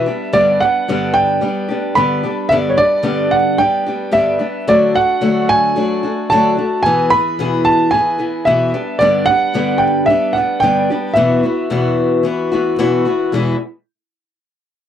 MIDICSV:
0, 0, Header, 1, 3, 480
1, 0, Start_track
1, 0, Tempo, 541028
1, 304, Time_signature, 4, 2, 24, 8
1, 13204, End_track
2, 0, Start_track
2, 0, Title_t, "Grand piano"
2, 0, Program_c, 0, 0
2, 0, Note_on_c, 0, 76, 91
2, 297, Note_on_c, 0, 74, 97
2, 318, Note_off_c, 0, 76, 0
2, 524, Note_off_c, 0, 74, 0
2, 536, Note_on_c, 0, 78, 96
2, 988, Note_off_c, 0, 78, 0
2, 1008, Note_on_c, 0, 79, 103
2, 1733, Note_on_c, 0, 83, 94
2, 1761, Note_off_c, 0, 79, 0
2, 2208, Note_on_c, 0, 76, 98
2, 2236, Note_off_c, 0, 83, 0
2, 2253, Note_off_c, 0, 76, 0
2, 2391, Note_on_c, 0, 73, 68
2, 2462, Note_off_c, 0, 73, 0
2, 2463, Note_on_c, 0, 74, 103
2, 2939, Note_on_c, 0, 78, 89
2, 2962, Note_off_c, 0, 74, 0
2, 3168, Note_off_c, 0, 78, 0
2, 3180, Note_on_c, 0, 79, 99
2, 3662, Note_on_c, 0, 76, 86
2, 3681, Note_off_c, 0, 79, 0
2, 4158, Note_on_c, 0, 74, 90
2, 4162, Note_off_c, 0, 76, 0
2, 4396, Note_on_c, 0, 78, 97
2, 4402, Note_off_c, 0, 74, 0
2, 4872, Note_on_c, 0, 80, 110
2, 4888, Note_off_c, 0, 78, 0
2, 5588, Note_on_c, 0, 81, 88
2, 5613, Note_off_c, 0, 80, 0
2, 6056, Note_on_c, 0, 80, 96
2, 6084, Note_off_c, 0, 81, 0
2, 6303, Note_on_c, 0, 83, 105
2, 6311, Note_off_c, 0, 80, 0
2, 6753, Note_off_c, 0, 83, 0
2, 6785, Note_on_c, 0, 81, 98
2, 7016, Note_on_c, 0, 80, 93
2, 7035, Note_off_c, 0, 81, 0
2, 7499, Note_on_c, 0, 76, 85
2, 7517, Note_off_c, 0, 80, 0
2, 7950, Note_off_c, 0, 76, 0
2, 7974, Note_on_c, 0, 74, 89
2, 8212, Note_on_c, 0, 78, 108
2, 8229, Note_off_c, 0, 74, 0
2, 8677, Note_on_c, 0, 79, 95
2, 8714, Note_off_c, 0, 78, 0
2, 8924, Note_on_c, 0, 76, 93
2, 8940, Note_off_c, 0, 79, 0
2, 9164, Note_on_c, 0, 78, 82
2, 9183, Note_off_c, 0, 76, 0
2, 9405, Note_on_c, 0, 79, 91
2, 9423, Note_off_c, 0, 78, 0
2, 9879, Note_on_c, 0, 76, 83
2, 9909, Note_off_c, 0, 79, 0
2, 11294, Note_off_c, 0, 76, 0
2, 13204, End_track
3, 0, Start_track
3, 0, Title_t, "Steel-string acoustic guitar"
3, 0, Program_c, 1, 25
3, 54, Note_on_c, 1, 67, 53
3, 64, Note_on_c, 1, 59, 44
3, 65, Note_on_c, 1, 62, 53
3, 75, Note_on_c, 1, 55, 46
3, 283, Note_off_c, 1, 55, 0
3, 286, Note_off_c, 1, 62, 0
3, 289, Note_on_c, 1, 43, 78
3, 290, Note_off_c, 1, 67, 0
3, 291, Note_off_c, 1, 59, 0
3, 292, Note_on_c, 1, 50, 82
3, 293, Note_on_c, 1, 55, 82
3, 297, Note_on_c, 1, 62, 92
3, 301, Note_on_c, 1, 59, 85
3, 301, Note_on_c, 1, 67, 86
3, 533, Note_off_c, 1, 67, 0
3, 534, Note_off_c, 1, 62, 0
3, 537, Note_off_c, 1, 43, 0
3, 539, Note_off_c, 1, 50, 0
3, 540, Note_off_c, 1, 55, 0
3, 543, Note_on_c, 1, 67, 51
3, 544, Note_off_c, 1, 59, 0
3, 544, Note_on_c, 1, 62, 48
3, 553, Note_on_c, 1, 59, 47
3, 562, Note_on_c, 1, 55, 42
3, 778, Note_off_c, 1, 55, 0
3, 781, Note_off_c, 1, 59, 0
3, 784, Note_off_c, 1, 62, 0
3, 784, Note_on_c, 1, 43, 78
3, 785, Note_off_c, 1, 67, 0
3, 789, Note_on_c, 1, 55, 73
3, 790, Note_on_c, 1, 50, 82
3, 792, Note_on_c, 1, 59, 83
3, 794, Note_on_c, 1, 62, 84
3, 798, Note_on_c, 1, 67, 82
3, 1241, Note_off_c, 1, 55, 0
3, 1249, Note_off_c, 1, 59, 0
3, 1252, Note_on_c, 1, 55, 62
3, 1257, Note_off_c, 1, 67, 0
3, 1260, Note_off_c, 1, 62, 0
3, 1260, Note_on_c, 1, 59, 64
3, 1263, Note_on_c, 1, 62, 67
3, 1266, Note_off_c, 1, 43, 0
3, 1268, Note_on_c, 1, 67, 65
3, 1270, Note_off_c, 1, 50, 0
3, 1484, Note_off_c, 1, 67, 0
3, 1495, Note_on_c, 1, 67, 52
3, 1500, Note_off_c, 1, 55, 0
3, 1500, Note_off_c, 1, 62, 0
3, 1504, Note_off_c, 1, 59, 0
3, 1511, Note_on_c, 1, 62, 51
3, 1515, Note_on_c, 1, 59, 50
3, 1521, Note_on_c, 1, 55, 44
3, 1727, Note_off_c, 1, 55, 0
3, 1738, Note_off_c, 1, 59, 0
3, 1738, Note_on_c, 1, 55, 79
3, 1740, Note_on_c, 1, 43, 78
3, 1740, Note_on_c, 1, 50, 81
3, 1742, Note_off_c, 1, 62, 0
3, 1742, Note_off_c, 1, 67, 0
3, 1748, Note_on_c, 1, 59, 92
3, 1753, Note_on_c, 1, 62, 80
3, 1754, Note_on_c, 1, 67, 86
3, 1971, Note_off_c, 1, 67, 0
3, 1979, Note_off_c, 1, 62, 0
3, 1981, Note_on_c, 1, 67, 56
3, 1984, Note_off_c, 1, 55, 0
3, 1984, Note_off_c, 1, 59, 0
3, 1985, Note_off_c, 1, 43, 0
3, 1985, Note_off_c, 1, 50, 0
3, 1989, Note_on_c, 1, 62, 50
3, 1995, Note_on_c, 1, 59, 47
3, 2004, Note_on_c, 1, 55, 47
3, 2219, Note_off_c, 1, 55, 0
3, 2225, Note_off_c, 1, 59, 0
3, 2226, Note_off_c, 1, 67, 0
3, 2228, Note_on_c, 1, 43, 78
3, 2229, Note_on_c, 1, 55, 78
3, 2230, Note_off_c, 1, 62, 0
3, 2230, Note_on_c, 1, 50, 74
3, 2235, Note_on_c, 1, 59, 86
3, 2238, Note_on_c, 1, 67, 89
3, 2241, Note_on_c, 1, 62, 88
3, 2448, Note_off_c, 1, 67, 0
3, 2454, Note_off_c, 1, 62, 0
3, 2458, Note_on_c, 1, 67, 54
3, 2463, Note_off_c, 1, 59, 0
3, 2464, Note_off_c, 1, 55, 0
3, 2465, Note_on_c, 1, 62, 48
3, 2469, Note_off_c, 1, 43, 0
3, 2470, Note_off_c, 1, 50, 0
3, 2474, Note_on_c, 1, 59, 46
3, 2475, Note_on_c, 1, 55, 47
3, 2680, Note_off_c, 1, 59, 0
3, 2681, Note_off_c, 1, 55, 0
3, 2685, Note_on_c, 1, 43, 82
3, 2688, Note_off_c, 1, 62, 0
3, 2690, Note_on_c, 1, 50, 81
3, 2691, Note_off_c, 1, 67, 0
3, 2691, Note_on_c, 1, 55, 84
3, 2691, Note_on_c, 1, 59, 80
3, 2699, Note_on_c, 1, 62, 81
3, 2702, Note_on_c, 1, 67, 78
3, 3167, Note_off_c, 1, 55, 0
3, 3178, Note_off_c, 1, 43, 0
3, 3178, Note_off_c, 1, 59, 0
3, 3178, Note_on_c, 1, 55, 58
3, 3181, Note_off_c, 1, 50, 0
3, 3183, Note_off_c, 1, 67, 0
3, 3188, Note_on_c, 1, 59, 57
3, 3191, Note_off_c, 1, 62, 0
3, 3193, Note_on_c, 1, 67, 58
3, 3195, Note_on_c, 1, 62, 61
3, 3418, Note_off_c, 1, 67, 0
3, 3425, Note_off_c, 1, 55, 0
3, 3427, Note_off_c, 1, 62, 0
3, 3429, Note_on_c, 1, 67, 59
3, 3430, Note_off_c, 1, 59, 0
3, 3438, Note_on_c, 1, 62, 48
3, 3445, Note_on_c, 1, 59, 45
3, 3447, Note_on_c, 1, 55, 43
3, 3647, Note_off_c, 1, 55, 0
3, 3649, Note_off_c, 1, 59, 0
3, 3649, Note_off_c, 1, 67, 0
3, 3650, Note_on_c, 1, 43, 74
3, 3653, Note_off_c, 1, 62, 0
3, 3655, Note_on_c, 1, 50, 75
3, 3657, Note_on_c, 1, 55, 87
3, 3659, Note_on_c, 1, 67, 84
3, 3660, Note_on_c, 1, 59, 80
3, 3663, Note_on_c, 1, 62, 84
3, 3885, Note_off_c, 1, 67, 0
3, 3892, Note_off_c, 1, 62, 0
3, 3895, Note_on_c, 1, 67, 54
3, 3899, Note_off_c, 1, 59, 0
3, 3901, Note_off_c, 1, 43, 0
3, 3902, Note_off_c, 1, 55, 0
3, 3902, Note_on_c, 1, 62, 51
3, 3904, Note_off_c, 1, 50, 0
3, 3909, Note_on_c, 1, 59, 45
3, 3912, Note_on_c, 1, 55, 43
3, 4138, Note_off_c, 1, 62, 0
3, 4144, Note_off_c, 1, 67, 0
3, 4147, Note_off_c, 1, 59, 0
3, 4147, Note_on_c, 1, 50, 77
3, 4149, Note_off_c, 1, 55, 0
3, 4149, Note_on_c, 1, 62, 91
3, 4150, Note_on_c, 1, 57, 89
3, 4152, Note_on_c, 1, 54, 87
3, 4159, Note_on_c, 1, 66, 91
3, 4375, Note_off_c, 1, 66, 0
3, 4386, Note_off_c, 1, 62, 0
3, 4386, Note_on_c, 1, 66, 55
3, 4390, Note_off_c, 1, 50, 0
3, 4391, Note_off_c, 1, 57, 0
3, 4392, Note_off_c, 1, 54, 0
3, 4397, Note_on_c, 1, 62, 48
3, 4404, Note_on_c, 1, 57, 44
3, 4616, Note_off_c, 1, 57, 0
3, 4618, Note_off_c, 1, 62, 0
3, 4622, Note_on_c, 1, 50, 76
3, 4626, Note_off_c, 1, 66, 0
3, 4627, Note_on_c, 1, 54, 74
3, 4627, Note_on_c, 1, 57, 84
3, 4629, Note_on_c, 1, 62, 83
3, 4637, Note_on_c, 1, 66, 84
3, 5098, Note_off_c, 1, 54, 0
3, 5101, Note_off_c, 1, 57, 0
3, 5106, Note_off_c, 1, 62, 0
3, 5107, Note_off_c, 1, 50, 0
3, 5108, Note_on_c, 1, 54, 61
3, 5112, Note_on_c, 1, 57, 63
3, 5114, Note_off_c, 1, 66, 0
3, 5117, Note_on_c, 1, 62, 65
3, 5125, Note_on_c, 1, 66, 67
3, 5338, Note_off_c, 1, 66, 0
3, 5348, Note_on_c, 1, 66, 51
3, 5350, Note_off_c, 1, 54, 0
3, 5352, Note_off_c, 1, 57, 0
3, 5352, Note_off_c, 1, 62, 0
3, 5363, Note_on_c, 1, 62, 52
3, 5375, Note_on_c, 1, 57, 42
3, 5590, Note_off_c, 1, 66, 0
3, 5597, Note_off_c, 1, 62, 0
3, 5598, Note_on_c, 1, 50, 83
3, 5599, Note_off_c, 1, 57, 0
3, 5606, Note_on_c, 1, 54, 89
3, 5608, Note_on_c, 1, 62, 94
3, 5610, Note_on_c, 1, 57, 92
3, 5614, Note_on_c, 1, 66, 95
3, 5818, Note_off_c, 1, 66, 0
3, 5829, Note_on_c, 1, 66, 49
3, 5831, Note_off_c, 1, 62, 0
3, 5832, Note_off_c, 1, 57, 0
3, 5835, Note_off_c, 1, 50, 0
3, 5839, Note_off_c, 1, 54, 0
3, 5842, Note_on_c, 1, 57, 47
3, 5842, Note_on_c, 1, 62, 49
3, 6070, Note_off_c, 1, 66, 0
3, 6076, Note_off_c, 1, 62, 0
3, 6077, Note_off_c, 1, 57, 0
3, 6078, Note_on_c, 1, 40, 80
3, 6084, Note_on_c, 1, 47, 77
3, 6085, Note_on_c, 1, 52, 88
3, 6086, Note_on_c, 1, 59, 84
3, 6089, Note_on_c, 1, 68, 87
3, 6091, Note_on_c, 1, 64, 83
3, 6311, Note_off_c, 1, 68, 0
3, 6315, Note_off_c, 1, 40, 0
3, 6317, Note_off_c, 1, 47, 0
3, 6318, Note_off_c, 1, 52, 0
3, 6319, Note_off_c, 1, 59, 0
3, 6319, Note_off_c, 1, 64, 0
3, 6321, Note_on_c, 1, 68, 55
3, 6329, Note_on_c, 1, 64, 47
3, 6333, Note_on_c, 1, 52, 47
3, 6333, Note_on_c, 1, 59, 49
3, 6555, Note_off_c, 1, 52, 0
3, 6555, Note_off_c, 1, 59, 0
3, 6555, Note_on_c, 1, 40, 82
3, 6556, Note_off_c, 1, 68, 0
3, 6556, Note_on_c, 1, 47, 78
3, 6557, Note_off_c, 1, 64, 0
3, 6566, Note_on_c, 1, 52, 86
3, 6566, Note_on_c, 1, 59, 88
3, 6568, Note_on_c, 1, 64, 88
3, 6572, Note_on_c, 1, 68, 89
3, 7012, Note_off_c, 1, 52, 0
3, 7023, Note_on_c, 1, 52, 58
3, 7032, Note_off_c, 1, 64, 0
3, 7033, Note_off_c, 1, 40, 0
3, 7033, Note_off_c, 1, 47, 0
3, 7035, Note_off_c, 1, 59, 0
3, 7035, Note_off_c, 1, 68, 0
3, 7038, Note_on_c, 1, 59, 61
3, 7043, Note_on_c, 1, 64, 62
3, 7046, Note_on_c, 1, 68, 60
3, 7249, Note_off_c, 1, 68, 0
3, 7259, Note_on_c, 1, 68, 53
3, 7260, Note_off_c, 1, 64, 0
3, 7262, Note_off_c, 1, 59, 0
3, 7266, Note_off_c, 1, 52, 0
3, 7271, Note_on_c, 1, 64, 54
3, 7273, Note_on_c, 1, 59, 45
3, 7279, Note_on_c, 1, 52, 48
3, 7504, Note_off_c, 1, 68, 0
3, 7506, Note_off_c, 1, 64, 0
3, 7507, Note_off_c, 1, 52, 0
3, 7509, Note_off_c, 1, 59, 0
3, 7511, Note_on_c, 1, 40, 83
3, 7513, Note_on_c, 1, 47, 78
3, 7517, Note_on_c, 1, 52, 77
3, 7517, Note_on_c, 1, 64, 86
3, 7517, Note_on_c, 1, 68, 85
3, 7520, Note_on_c, 1, 59, 88
3, 7748, Note_off_c, 1, 68, 0
3, 7750, Note_off_c, 1, 40, 0
3, 7750, Note_off_c, 1, 64, 0
3, 7751, Note_off_c, 1, 47, 0
3, 7751, Note_off_c, 1, 59, 0
3, 7752, Note_on_c, 1, 67, 58
3, 7753, Note_off_c, 1, 52, 0
3, 7753, Note_on_c, 1, 62, 56
3, 7761, Note_on_c, 1, 59, 48
3, 7765, Note_on_c, 1, 55, 42
3, 7983, Note_off_c, 1, 59, 0
3, 7984, Note_off_c, 1, 55, 0
3, 7986, Note_on_c, 1, 43, 80
3, 7990, Note_off_c, 1, 67, 0
3, 7990, Note_on_c, 1, 50, 88
3, 7991, Note_off_c, 1, 62, 0
3, 7993, Note_on_c, 1, 59, 93
3, 7994, Note_on_c, 1, 55, 83
3, 8002, Note_on_c, 1, 62, 88
3, 8005, Note_on_c, 1, 67, 94
3, 8206, Note_off_c, 1, 67, 0
3, 8217, Note_off_c, 1, 62, 0
3, 8217, Note_on_c, 1, 67, 54
3, 8225, Note_off_c, 1, 59, 0
3, 8227, Note_off_c, 1, 43, 0
3, 8227, Note_on_c, 1, 62, 54
3, 8229, Note_off_c, 1, 50, 0
3, 8231, Note_off_c, 1, 55, 0
3, 8235, Note_on_c, 1, 59, 47
3, 8242, Note_on_c, 1, 55, 46
3, 8457, Note_off_c, 1, 55, 0
3, 8460, Note_on_c, 1, 43, 75
3, 8462, Note_off_c, 1, 67, 0
3, 8464, Note_off_c, 1, 59, 0
3, 8464, Note_off_c, 1, 62, 0
3, 8467, Note_on_c, 1, 55, 89
3, 8472, Note_on_c, 1, 50, 79
3, 8474, Note_on_c, 1, 59, 90
3, 8475, Note_on_c, 1, 62, 82
3, 8477, Note_on_c, 1, 67, 80
3, 8933, Note_off_c, 1, 55, 0
3, 8943, Note_off_c, 1, 43, 0
3, 8943, Note_on_c, 1, 55, 59
3, 8948, Note_off_c, 1, 59, 0
3, 8950, Note_off_c, 1, 50, 0
3, 8951, Note_off_c, 1, 62, 0
3, 8951, Note_on_c, 1, 59, 59
3, 8952, Note_off_c, 1, 67, 0
3, 8961, Note_on_c, 1, 62, 66
3, 8963, Note_on_c, 1, 67, 72
3, 9180, Note_off_c, 1, 67, 0
3, 9185, Note_off_c, 1, 55, 0
3, 9189, Note_off_c, 1, 59, 0
3, 9189, Note_off_c, 1, 62, 0
3, 9190, Note_on_c, 1, 67, 60
3, 9200, Note_on_c, 1, 62, 50
3, 9206, Note_on_c, 1, 59, 50
3, 9214, Note_on_c, 1, 55, 48
3, 9422, Note_off_c, 1, 55, 0
3, 9422, Note_off_c, 1, 59, 0
3, 9423, Note_off_c, 1, 62, 0
3, 9425, Note_on_c, 1, 50, 82
3, 9428, Note_off_c, 1, 67, 0
3, 9429, Note_on_c, 1, 43, 79
3, 9432, Note_on_c, 1, 55, 83
3, 9433, Note_on_c, 1, 59, 82
3, 9434, Note_on_c, 1, 62, 89
3, 9440, Note_on_c, 1, 67, 84
3, 9661, Note_off_c, 1, 67, 0
3, 9665, Note_off_c, 1, 50, 0
3, 9667, Note_off_c, 1, 43, 0
3, 9669, Note_off_c, 1, 55, 0
3, 9669, Note_off_c, 1, 59, 0
3, 9670, Note_off_c, 1, 62, 0
3, 9672, Note_on_c, 1, 67, 55
3, 9684, Note_on_c, 1, 62, 47
3, 9689, Note_on_c, 1, 59, 49
3, 9693, Note_on_c, 1, 55, 46
3, 9898, Note_off_c, 1, 59, 0
3, 9898, Note_on_c, 1, 40, 86
3, 9901, Note_on_c, 1, 47, 84
3, 9903, Note_off_c, 1, 55, 0
3, 9905, Note_off_c, 1, 62, 0
3, 9907, Note_on_c, 1, 52, 90
3, 9908, Note_off_c, 1, 67, 0
3, 9908, Note_on_c, 1, 64, 94
3, 9909, Note_on_c, 1, 59, 96
3, 9912, Note_on_c, 1, 66, 84
3, 10130, Note_off_c, 1, 66, 0
3, 10141, Note_off_c, 1, 40, 0
3, 10141, Note_on_c, 1, 66, 57
3, 10143, Note_off_c, 1, 47, 0
3, 10146, Note_off_c, 1, 52, 0
3, 10147, Note_off_c, 1, 59, 0
3, 10147, Note_off_c, 1, 64, 0
3, 10157, Note_on_c, 1, 64, 56
3, 10166, Note_on_c, 1, 59, 50
3, 10168, Note_on_c, 1, 52, 43
3, 10370, Note_off_c, 1, 52, 0
3, 10377, Note_off_c, 1, 59, 0
3, 10381, Note_on_c, 1, 52, 84
3, 10382, Note_off_c, 1, 64, 0
3, 10383, Note_off_c, 1, 66, 0
3, 10383, Note_on_c, 1, 40, 86
3, 10385, Note_on_c, 1, 47, 80
3, 10388, Note_on_c, 1, 59, 89
3, 10393, Note_on_c, 1, 64, 88
3, 10397, Note_on_c, 1, 66, 86
3, 10841, Note_off_c, 1, 52, 0
3, 10851, Note_on_c, 1, 52, 65
3, 10853, Note_off_c, 1, 59, 0
3, 10856, Note_off_c, 1, 64, 0
3, 10863, Note_off_c, 1, 40, 0
3, 10863, Note_on_c, 1, 59, 71
3, 10864, Note_off_c, 1, 47, 0
3, 10866, Note_on_c, 1, 64, 78
3, 10867, Note_off_c, 1, 66, 0
3, 10877, Note_on_c, 1, 66, 78
3, 11094, Note_off_c, 1, 66, 0
3, 11097, Note_off_c, 1, 52, 0
3, 11103, Note_off_c, 1, 59, 0
3, 11105, Note_off_c, 1, 64, 0
3, 11105, Note_on_c, 1, 66, 63
3, 11114, Note_on_c, 1, 64, 55
3, 11117, Note_on_c, 1, 59, 61
3, 11126, Note_on_c, 1, 52, 54
3, 11335, Note_off_c, 1, 52, 0
3, 11336, Note_off_c, 1, 59, 0
3, 11342, Note_off_c, 1, 64, 0
3, 11343, Note_off_c, 1, 66, 0
3, 11343, Note_on_c, 1, 40, 88
3, 11345, Note_on_c, 1, 52, 95
3, 11347, Note_on_c, 1, 47, 85
3, 11347, Note_on_c, 1, 59, 93
3, 11353, Note_on_c, 1, 64, 107
3, 11354, Note_on_c, 1, 66, 101
3, 11568, Note_off_c, 1, 66, 0
3, 11578, Note_on_c, 1, 66, 61
3, 11582, Note_off_c, 1, 40, 0
3, 11582, Note_off_c, 1, 64, 0
3, 11583, Note_off_c, 1, 52, 0
3, 11584, Note_off_c, 1, 47, 0
3, 11584, Note_off_c, 1, 59, 0
3, 11593, Note_on_c, 1, 64, 56
3, 11598, Note_on_c, 1, 59, 53
3, 11602, Note_on_c, 1, 52, 53
3, 11819, Note_on_c, 1, 40, 81
3, 11820, Note_off_c, 1, 66, 0
3, 11823, Note_off_c, 1, 52, 0
3, 11825, Note_off_c, 1, 59, 0
3, 11827, Note_off_c, 1, 64, 0
3, 11827, Note_on_c, 1, 47, 81
3, 11833, Note_on_c, 1, 52, 89
3, 11835, Note_on_c, 1, 56, 92
3, 11836, Note_on_c, 1, 59, 99
3, 11848, Note_on_c, 1, 64, 90
3, 12012, Note_off_c, 1, 40, 0
3, 12016, Note_off_c, 1, 47, 0
3, 12019, Note_off_c, 1, 52, 0
3, 12020, Note_off_c, 1, 56, 0
3, 12020, Note_off_c, 1, 59, 0
3, 12026, Note_off_c, 1, 64, 0
3, 13204, End_track
0, 0, End_of_file